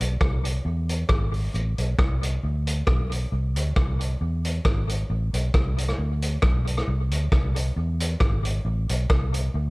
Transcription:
0.01 fingered electric bass B1, closed hi-hat
0.21 fingered electric bass C2, kick, cross-stick
0.45 closed hi-hat
0.65 fingered electric bass E2
0.89 closed hi-hat
1.09 fingered electric bass G#1, kick, cross-stick
1.34 open hi-hat
1.54 fingered electric bass A1, hi-hat pedal
1.78 fingered electric bass B1, closed hi-hat
1.98 fingered electric bass C2, kick, cross-stick
2.23 closed hi-hat
2.43 fingered electric bass D2
2.67 closed hi-hat
2.87 fingered electric bass B1, kick, cross-stick
3.12 closed hi-hat
3.32 fingered electric bass C2
3.56 fingered electric bass D2, closed hi-hat
3.76 fingered electric bass C2, kick, cross-stick
4.01 closed hi-hat
4.21 fingered electric bass E2
4.45 closed hi-hat
4.65 fingered electric bass G#1, kick, cross-stick
4.89 closed hi-hat
5.10 fingered electric bass A1
5.33 fingered electric bass B1, closed hi-hat
5.54 fingered electric bass C2, kick, cross-stick
5.78 closed hi-hat
5.88 cross-stick
5.98 fingered electric bass D2
6.22 closed hi-hat
6.42 fingered electric bass B1, kick, cross-stick
6.67 closed hi-hat
6.77 cross-stick
6.88 fingered electric bass C2
7.11 fingered electric bass D2, closed hi-hat
7.32 fingered electric bass C2, kick, cross-stick
7.56 closed hi-hat
7.76 fingered electric bass E2
8.00 closed hi-hat
8.20 fingered electric bass G#1, kick, cross-stick
8.45 closed hi-hat
8.65 fingered electric bass A1
8.89 fingered electric bass B1, closed hi-hat
9.10 fingered electric bass C2, kick, cross-stick
9.34 closed hi-hat
9.54 fingered electric bass D2

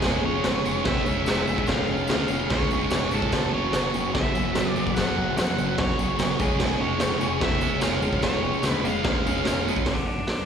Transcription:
Already playing: lead electric guitar G#4
0.02 picked electric bass F1, distorted electric guitar C#3 G#3 C#4, snare, tambourine, crash
0.14 tambourine
0.23 picked electric bass F1, distorted electric guitar C#3 G#3 C#4, lead electric guitar C#5
0.44 picked electric bass F1, distorted electric guitar C#3 G#3 C#4, snare, tambourine, crash
0.64 picked electric bass F1, distorted electric guitar C#3 G#3 C#4, tambourine
0.85 picked electric bass F1, distorted electric guitar C#3 G#3 C#4, lead electric guitar E5, kick, snare, crash
1.06 picked electric bass F1, distorted electric guitar C#3 G#3 C#4, tambourine
1.26 picked electric bass F1, distorted electric guitar C#3 G#3 C#4, snare, tambourine, crash
1.38 tambourine
1.47 picked electric bass F1, distorted electric guitar C#3 G#3 C#4, tambourine
1.58 kick
1.67 picked electric bass F1, distorted electric guitar C#3 G#3 C#4, lead electric guitar F5, kick, snare, tambourine, crash
1.87 picked electric bass F1, distorted electric guitar C#3 G#3 C#4, tambourine
1.97 tambourine
2.08 picked electric bass D2, distorted electric guitar C#3 G#3 C#4, lead electric guitar F5, snare, tambourine, crash
2.28 picked electric bass F1, distorted electric guitar C#3 G#3 C#4, tambourine
2.40 tambourine
2.50 picked electric bass D2, distorted electric guitar C#3 G#3 C#4, lead electric guitar C#5, kick, snare, tambourine, crash
2.59 tambourine
2.71 picked electric bass F1, distorted electric guitar C#3 G#3 C#4, tambourine
2.81 tambourine
2.91 picked electric bass F1, distorted electric guitar C#3 G#3 C#4, snare, tambourine, crash
3.11 picked electric bass G#1, distorted electric guitar C#3 G#3 C#4, lead electric guitar A4, tambourine
3.22 kick
3.32 picked electric bass F#1, distorted electric guitar F#2 C#3 F#3, kick, snare, tambourine, crash
3.42 tambourine
3.52 picked electric bass F#1, distorted electric guitar F#2 C#3 F#3, lead electric guitar C#5
3.73 picked electric bass F#1, distorted electric guitar F#2 C#3 F#3, snare, tambourine, crash
3.94 picked electric bass F#1, distorted electric guitar F#2 C#3 F#3, tambourine
4.14 picked electric bass F#1, distorted electric guitar F#2 C#3 F#3, lead electric guitar E5, kick, snare, crash
4.34 picked electric bass F#1, distorted electric guitar F#2 C#3 F#3, tambourine
4.54 picked electric bass F#1, distorted electric guitar F#2 C#3 F#3, snare, tambourine, crash
4.66 tambourine
4.70 lead electric guitar D5
4.75 picked electric bass F#1, distorted electric guitar F#2 C#3 F#3, tambourine
4.87 kick, tambourine
4.95 picked electric bass F#1, distorted electric guitar F#2 C#3 F#3, lead electric guitar F#5, kick, snare, tambourine, crash
5.07 tambourine
5.16 picked electric bass F#1, distorted electric guitar F#2 C#3 F#3
5.37 picked electric bass F2, distorted electric guitar F#2 C#3 F#3, lead electric guitar F#5, snare, tambourine, crash
5.57 picked electric bass F#1, distorted electric guitar F#2 C#3 F#3, tambourine
5.78 picked electric bass F1, distorted electric guitar F#2 C#3 F#3, lead electric guitar C#5, kick, snare, crash
5.99 picked electric bass F#1, distorted electric guitar F#2 C#3 F#3, tambourine
6.18 picked electric bass F#1, distorted electric guitar F#2 C#3 F#3, snare, tambourine, crash
6.30 tambourine
6.39 picked electric bass F1, distorted electric guitar C#3 G#3 C#4, lead electric guitar G#4, kick, tambourine
6.51 tambourine
6.59 picked electric bass F1, distorted electric guitar C#3 G#3 C#4, snare, tambourine, crash
6.70 tambourine
6.79 picked electric bass F1, distorted electric guitar C#3 G#3 C#4, lead electric guitar C#5
6.98 picked electric bass F1, distorted electric guitar C#3 G#3 C#4, snare, tambourine, crash
7.19 picked electric bass F1, distorted electric guitar C#3 G#3 C#4, tambourine
7.40 picked electric bass F1, distorted electric guitar C#3 G#3 C#4, lead electric guitar E5, kick, snare, crash
7.60 picked electric bass F1, distorted electric guitar C#3 G#3 C#4, tambourine
7.81 picked electric bass F1, distorted electric guitar C#3 G#3 C#4, lead electric guitar F5, snare, tambourine, crash
8.01 picked electric bass F1, distorted electric guitar C#3 G#3 C#4, tambourine
8.12 kick, tambourine
8.22 picked electric bass F1, distorted electric guitar C#3 G#3 C#4, lead electric guitar C#5, kick, snare, tambourine, crash
8.33 tambourine
8.43 picked electric bass F1, distorted electric guitar C#3 G#3 C#4, tambourine
8.54 tambourine
8.62 picked electric bass D2, distorted electric guitar C#3 G#3 C#4, snare, tambourine, crash
8.72 lead electric guitar B4
8.83 picked electric bass F1, distorted electric guitar C#3 G#3 C#4, lead electric guitar F5, tambourine
8.96 tambourine
9.03 picked electric bass D2, distorted electric guitar C#3 G#3 C#4, kick, snare, tambourine, crash
9.25 picked electric bass F1, distorted electric guitar C#3 G#3 C#4, tambourine
9.44 picked electric bass F1, distorted electric guitar C#3 G#3 C#4, snare, tambourine, crash
9.65 picked electric bass F1, distorted electric guitar C#3 G#3 C#4, tambourine
9.76 kick
9.86 picked electric bass F#1, distorted electric guitar F#2, lead electric guitar A4 F#5, kick, snare, open hi-hat
9.97 picked electric bass F#1, distorted electric guitar F#2
10.07 lead electric guitar A4 F#5
10.18 muted picked electric bass stroke, muted distorted electric guitar stroke
10.27 lead electric guitar A4 F#5, snare, open hi-hat
10.38 muted picked electric bass stroke, muted distorted electric guitar stroke

